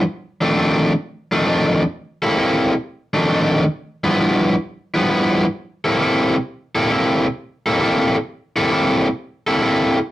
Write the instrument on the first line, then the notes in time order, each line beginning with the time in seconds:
overdriven electric guitar
0.41 F2 D#3 A3 D4
0.56 F2 D#3 A3 D4
1.32 F2 D#3 A3 D4
1.47 F2 D#3 A3 D4
2.22 C3 A#3 E4 A4
2.37 C3 A#3 E4 A4
3.14 F2 D#3 A3 D4
3.29 F2 D#3 A3 D4
4.04 G2 F3 B3 E4
4.19 G2 F3 B3 E4
4.94 G2 F3 B3 E4
5.10 G2 F3 B3 E4
5.84 C3 A#3 E4 A4
6.01 C3 A#3 E4 A4
6.75 C3 A#3 E4 A4
6.91 C3 A#3 E4 A4
7.66 C3 A#3 E4 A4
7.81 C3 A#3 E4 A4
8.56 C3 A#3 E4 A4
8.71 C3 A#3 E4 A4
9.47 C3 A#3 E4 A4
9.62 C3 A#3 E4 A4